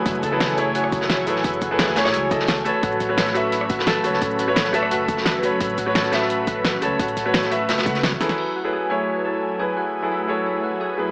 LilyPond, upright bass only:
\new Staff \with { instrumentName = "Upright bass" } { \clef bass \time 4/4 \key fis \minor \tempo 4 = 173 fis,,2.~ fis,,8 a,,8 | fis,,2 cis,4. r8 | a,,2.~ a,,8 cis,8 | a,,2 fis,,2 |
a,,2.~ a,,8 cis,8 | a,,2 fis,,8 cis,4 e,,8 | r1 | r1 | }